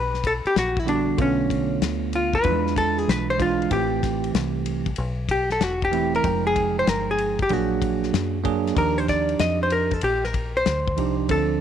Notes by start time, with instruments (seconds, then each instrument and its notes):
Already playing: fingered electric bass B1, hollow-body jazz guitar B4
0.14 snare
0.24 hollow-body jazz guitar A4, kick, ride
0.45 hollow-body jazz guitar G4, muted fingered electric bass stroke, ride
0.56 fingered electric bass A#1, hollow-body jazz guitar F#4, snare, hi-hat pedal, ride
0.77 hollow-body jazz guitar E4, kick
0.86 tine electric piano D3 G3 B3 F#4, hollow-body jazz guitar D4, ride
1.17 fingered electric bass B1, tine electric piano D3 A3 B3 F4, kick, ride
1.22 hollow-body jazz guitar C#4
1.50 kick, ride
1.81 fingered electric bass D2, snare, hi-hat pedal, ride
2.13 hollow-body jazz guitar F4, ride
2.33 hollow-body jazz guitar B4, kick
2.43 fingered electric bass E2, tine electric piano E3 F3 D4 F4, kick, ride
2.51 tine electric piano G#3
2.67 snare
2.76 hollow-body jazz guitar A4, kick, ride
2.98 hollow-body jazz guitar G#4, ride
3.08 fingered electric bass B1, hollow-body jazz guitar B4, snare, hi-hat pedal, ride
3.30 hollow-body jazz guitar C5
3.37 tine electric piano E3 G#3 D4 F4, kick, ride
3.42 hollow-body jazz guitar F4
3.62 ride
3.70 fingered electric bass A1, tine electric piano E3 A3 C4 G4, hollow-body jazz guitar G4, kick, ride
4.03 kick, snare, ride
4.24 ride
4.35 fingered electric bass C2, snare, hi-hat pedal, ride
4.66 ride
4.86 kick, ride
4.96 fingered electric bass B1, ride
5.29 hollow-body jazz guitar G4, kick, ride
5.50 hollow-body jazz guitar A4, snare
5.60 fingered electric bass E1, hollow-body jazz guitar F#4, snare, hi-hat pedal, ride
5.82 hollow-body jazz guitar G4, kick
5.91 tine electric piano E3 A3 C4 E4, ride
6.15 hollow-body jazz guitar A#4, ride
6.23 fingered electric bass F1, tine electric piano F3 G#3 D#4 G5, kick, ride
6.47 hollow-body jazz guitar G#4
6.56 kick, ride
6.79 hollow-body jazz guitar C5
6.87 fingered electric bass G1, hollow-body jazz guitar A#4, snare, hi-hat pedal, ride
7.11 hollow-body jazz guitar G#4
7.18 ride
7.39 hollow-body jazz guitar G4, kick, ride
7.49 fingered electric bass A#1, tine electric piano F#3 A#3 D4 G#4, hollow-body jazz guitar F#4, kick, ride
7.82 kick, ride
8.03 snare
8.13 fingered electric bass F#2, snare, hi-hat pedal, ride
8.44 tine electric piano F#3 A#3 D4 G#4, kick, ride
8.67 snare, ride
8.75 fingered electric bass D#2, tine electric piano F3 D4 D#4 G4, hollow-body jazz guitar A#4, kick, ride
8.98 hollow-body jazz guitar C5
9.08 hollow-body jazz guitar D5, kick, snare, ride
9.29 ride
9.39 fingered electric bass F2, hollow-body jazz guitar D#5, snare, hi-hat pedal, ride
9.63 hollow-body jazz guitar C5
9.70 hollow-body jazz guitar A#4, ride
9.91 hollow-body jazz guitar A4, kick, ride
10.01 fingered electric bass A#1, hollow-body jazz guitar G4, ride
10.24 hollow-body jazz guitar A#4, snare
10.34 kick, ride
10.57 hollow-body jazz guitar C5
10.66 fingered electric bass D2, snare, hi-hat pedal, ride
10.88 kick
10.97 fingered electric bass C2, tine electric piano F3 D4 D#4 G4, ride
11.29 fingered electric bass D2, tine electric piano F3 C4 D4 A4, hollow-body jazz guitar A4, kick, ride